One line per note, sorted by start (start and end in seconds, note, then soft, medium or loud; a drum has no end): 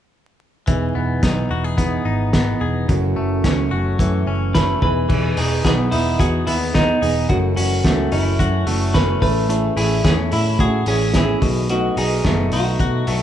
0.67 0.91 E1 medium
0.67 1.77 E3 medium
0.67 1.77 B3 medium
0.67 1.78 D#4 medium
0.67 1.79 G#4 medium
0.67 kick medium
0.67 closed hi-hat medium
0.95 1.19 E1 medium
0.95 1.76 B3 soft
1.23 1.47 B1 medium
1.23 2.04 D#4 soft
1.23 kick medium
1.23 snare medium
1.23 closed hi-hat medium
1.50 1.97 E1 medium
1.50 1.64 F#4 medium
1.64 2.60 G#4 soft
1.77 2.33 E3 medium
1.77 2.33 B3 medium
1.77 2.34 D#4 medium
1.77 2.34 G#4 medium
1.77 kick medium
1.77 closed hi-hat medium
2.05 2.53 G#1 medium
2.05 2.94 D#4 medium
2.33 2.89 E3 medium
2.33 2.89 B3 medium
2.33 2.89 D#4 medium
2.33 2.90 G#4 medium
2.33 kick medium
2.33 snare medium
2.33 closed hi-hat medium
2.61 2.85 E1 medium
2.61 2.94 G#4 medium
2.88 3.12 F#1 medium
2.88 3.71 F#2 medium
2.88 3.72 C#3 medium
2.88 3.74 E3 medium
2.88 3.72 A3 medium
2.88 3.72 C#4 medium
2.88 3.71 F#4 medium
2.88 kick medium
2.88 closed hi-hat medium
3.16 3.40 F#1 medium
3.16 4.53 A3 medium
3.44 3.68 C#2 medium
3.44 4.26 C#4 soft
3.44 kick medium
3.44 snare medium
3.44 closed hi-hat medium
3.71 3.95 F#1 medium
3.71 3.98 E3 soft
3.71 3.99 A3 soft
3.71 4.00 C#4 soft
3.71 4.00 F#4 soft
3.99 4.23 F#2 loud
3.99 4.54 E3 medium
3.99 4.54 A3 medium
3.99 4.55 C#4 medium
3.99 4.56 F#4 medium
3.99 kick loud
3.99 closed hi-hat medium
4.26 4.73 F#1 medium
4.26 4.88 C#4 medium
4.54 4.82 E3 medium
4.54 4.82 A3 medium
4.54 4.82 C#4 medium
4.54 4.82 F#4 medium
4.54 4.81 B4 medium
4.54 kick medium
4.54 snare medium
4.54 closed hi-hat medium
4.82 5.05 E1 medium
4.82 5.08 E3 soft
4.82 5.09 B3 soft
4.82 5.09 D#4 medium
4.82 5.10 G#4 medium
4.82 5.37 B4 medium
4.82 kick medium
5.09 5.33 E1 medium
5.09 5.37 E3 medium
5.09 5.37 B3 medium
5.09 5.38 D#4 medium
5.09 5.36 G#4 medium
5.09 kick medium
5.09 crash medium
5.37 5.61 E1 medium
5.37 5.64 B3 soft
5.37 5.65 D#4 soft
5.37 5.65 G#4 soft
5.37 open hi-hat medium
5.65 5.88 B1 medium
5.65 5.92 E3 medium
5.65 5.92 B3 medium
5.65 5.93 D#4 medium
5.65 5.91 G#4 medium
5.65 kick medium
5.65 snare medium
5.65 closed hi-hat medium
5.91 6.15 E1 medium
5.91 6.20 B3 soft
5.91 6.20 D#4 soft
5.91 6.20 E4 medium
5.91 6.20 G#4 soft
5.91 open hi-hat medium
6.19 6.43 E2 medium
6.19 6.47 E3 medium
6.19 6.48 B3 medium
6.19 6.47 D#4 medium
6.19 6.45 F#4 medium
6.19 6.45 G#4 medium
6.19 kick loud
6.19 closed hi-hat medium
6.47 6.94 D#2 medium
6.47 6.74 B3 soft
6.47 6.75 D#4 soft
6.47 6.54 E4 medium
6.47 6.74 G#4 soft
6.47 open hi-hat medium
6.74 7.02 E3 medium
6.74 7.03 B3 medium
6.74 7.02 D#4 medium
6.74 7.01 G#4 medium
6.74 kick medium
6.74 snare medium
6.74 closed hi-hat medium
7.02 7.26 E1 medium
7.02 7.30 B3 soft
7.02 7.30 D#4 soft
7.02 7.29 G#4 soft
7.02 open hi-hat medium
7.29 7.53 F#1 medium
7.29 7.57 F#2 medium
7.29 7.57 C#3 medium
7.29 7.57 E3 medium
7.29 7.57 A3 medium
7.29 7.56 C#4 medium
7.29 7.55 F#4 medium
7.29 kick medium
7.29 closed hi-hat medium
7.56 7.81 F#1 medium
7.56 7.83 E3 soft
7.56 7.83 A3 soft
7.56 7.84 C#4 soft
7.56 7.84 F#4 soft
7.56 open hi-hat medium
7.84 8.08 C#2 medium
7.84 8.12 F#2 medium
7.84 8.12 C#3 medium
7.84 8.12 E3 medium
7.84 8.12 A3 medium
7.84 8.11 C#4 medium
7.84 8.10 F#4 medium
7.84 kick medium
7.84 snare loud
7.84 closed hi-hat medium
8.11 8.36 F#1 medium
8.11 8.38 E3 soft
8.11 8.38 A3 soft
8.11 8.39 C#4 soft
8.11 8.97 E4 medium
8.11 8.39 F#4 soft
8.11 open hi-hat medium
8.39 8.63 F#2 medium
8.39 8.67 E3 medium
8.39 8.67 A3 medium
8.39 8.66 C#4 medium
8.39 8.65 F#4 medium
8.39 kick medium
8.39 closed hi-hat medium
8.67 9.14 F#1 medium
8.67 8.93 E3 soft
8.67 8.94 A3 soft
8.67 8.94 C#4 soft
8.67 8.94 F#4 medium
8.67 open hi-hat medium
8.94 9.22 F#2 medium
8.94 9.22 C#3 medium
8.94 9.22 E3 medium
8.94 9.22 A3 medium
8.94 9.22 C#4 medium
8.94 9.20 F#4 medium
8.94 9.21 B4 medium
8.94 kick medium
8.94 snare medium
8.94 closed hi-hat medium
9.21 9.69 A1 medium
9.21 9.49 A3 medium
9.21 9.48 C#4 soft
9.21 9.48 E4 soft
9.21 9.49 G#4 soft
9.21 9.77 B4 medium
9.21 kick medium
9.21 open hi-hat medium
9.48 9.77 A3 medium
9.48 9.77 C#4 medium
9.48 9.76 E4 medium
9.48 9.75 G#4 medium
9.48 closed hi-hat medium
9.76 10.00 A1 medium
9.76 10.03 C#4 soft
9.76 10.04 E4 soft
9.76 10.04 G#4 soft
9.76 open hi-hat medium
10.04 10.28 E2 medium
10.04 10.32 A3 medium
10.04 10.32 C#4 medium
10.04 10.31 E4 medium
10.04 10.30 G#4 medium
10.04 kick loud
10.04 snare loud
10.04 closed hi-hat medium
10.31 10.56 A2 medium
10.31 10.58 C#4 soft
10.31 10.59 E4 soft
10.31 10.59 G#4 soft
10.31 open hi-hat medium
10.59 10.83 A2 loud
10.59 10.87 A3 medium
10.59 10.87 C#4 medium
10.59 10.86 E4 medium
10.59 10.86 F#4 medium
10.59 10.85 G#4 medium
10.59 kick loud
10.59 closed hi-hat medium
10.86 11.34 A1 medium
10.86 11.14 C#4 soft
10.86 11.14 E4 soft
10.86 11.14 G#4 medium
10.86 open hi-hat medium
11.14 11.42 A3 medium
11.14 11.42 C#4 medium
11.14 11.43 E4 medium
11.14 11.41 G#4 medium
11.14 kick medium
11.14 snare medium
11.14 closed hi-hat medium
11.41 11.89 B1 medium
11.41 11.69 B2 medium
11.41 11.69 A3 soft
11.41 11.69 D#4 soft
11.41 11.69 F#4 soft
11.41 kick medium
11.41 open hi-hat medium
11.69 11.97 B2 medium
11.69 11.97 F#3 medium
11.69 11.98 A3 medium
11.69 11.97 D#4 medium
11.69 11.96 F#4 medium
11.69 closed hi-hat medium
11.97 12.20 B1 medium
11.97 12.24 A3 soft
11.97 12.25 D#4 soft
11.97 12.25 F#4 soft
11.97 12.49 G#4 medium
11.97 open hi-hat medium
12.24 12.48 F#1 medium
12.24 12.52 B2 medium
12.24 12.53 F#3 medium
12.24 12.53 A3 medium
12.24 12.53 D#4 medium
12.24 12.51 F#4 medium
12.24 kick medium
12.24 snare loud
12.24 closed hi-hat medium
12.52 12.76 B1 medium
12.52 12.80 A3 soft
12.52 12.81 D#4 soft
12.52 12.80 F#4 soft
12.52 open hi-hat medium
12.79 13.03 B2 medium
12.79 13.08 F#3 medium
12.79 13.08 A3 medium
12.79 13.08 D#4 medium
12.79 13.07 F#4 medium
12.79 kick medium
12.79 closed hi-hat medium
13.07 13.22 B1 medium
13.07 13.22 A3 soft
13.07 13.22 D#4 soft
13.07 13.22 F#4 soft
13.07 open hi-hat medium